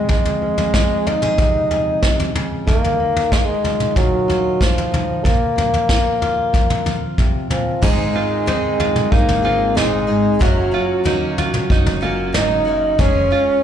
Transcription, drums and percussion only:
0.09 kick medium
0.09 floor tom medium
0.25 floor tom medium
0.58 floor tom medium
0.74 kick medium
0.74 snare medium
1.07 floor tom medium
1.22 mid tom medium
1.38 kick medium
1.38 floor tom medium
1.71 floor tom medium
2.02 kick medium
2.02 snare medium
2.19 floor tom medium
2.35 floor tom medium
2.35 mid tom medium
2.67 kick medium
2.67 floor tom medium
2.84 floor tom medium
3.16 floor tom medium
3.32 kick medium
3.32 snare medium
3.64 floor tom medium
3.80 mid tom medium
3.96 kick medium
3.96 floor tom medium
4.29 floor tom medium
4.61 kick medium
4.61 snare medium
4.78 floor tom medium
4.94 floor tom medium
4.94 mid tom medium
5.25 kick medium
5.25 floor tom medium
5.58 floor tom medium
5.74 floor tom medium
5.89 kick medium
5.89 snare medium
6.22 floor tom medium
6.54 kick medium
6.54 floor tom medium
6.70 mid tom medium
6.86 floor tom medium
7.18 kick medium
7.18 mid tom medium
7.50 floor tom medium
7.50 mid tom medium
7.82 kick medium
7.82 floor tom medium
7.82 crash medium
8.47 floor tom medium
8.80 floor tom medium
8.96 mid tom medium
9.12 kick medium
9.29 floor tom medium
9.77 snare medium
9.77 floor tom medium
10.41 kick loud
10.41 floor tom medium
11.05 floor tom medium
11.38 floor tom medium
11.54 mid tom medium
11.70 kick loud
11.86 floor tom medium
12.34 snare medium
12.34 floor tom medium
12.99 kick loud
12.99 floor tom medium

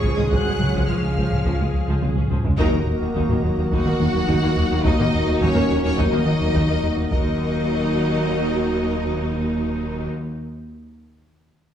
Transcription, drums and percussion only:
0.04 taiko medium
0.18 taiko low-mid medium
0.32 taiko loud
0.60 taiko low-mid medium
0.75 taiko medium
0.89 taiko low-mid medium
1.17 taiko medium
1.32 taiko low-mid soft
1.45 taiko medium
2.02 taiko mid medium
2.16 taiko low-mid medium
2.30 taiko low-mid loud
2.44 taiko low medium
2.59 taiko loud
2.73 taiko low-mid medium
3.15 taiko medium
3.30 taiko low-mid medium
3.72 taiko medium
4.28 taiko medium
4.85 taiko loud
4.99 taiko low-mid medium
5.41 taiko medium
5.55 taiko low-mid medium
5.98 taiko loud
6.55 taiko medium
7.11 taiko loud

